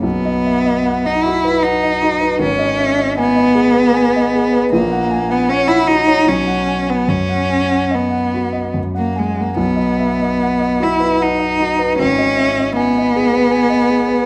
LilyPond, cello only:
\new Staff \with { instrumentName = "Cello" } { \time 3/4 \key b \major \tempo 4 = 76 b4~ b16 dis'16 e'8 dis'4 | cis'4 b2 | ais8. b16 cis'16 e'16 dis'8 cis'8. b16 | cis'4 b4 r16 ais16 gis16 ais16 |
b4. e'8 dis'4 | cis'4 b2 | }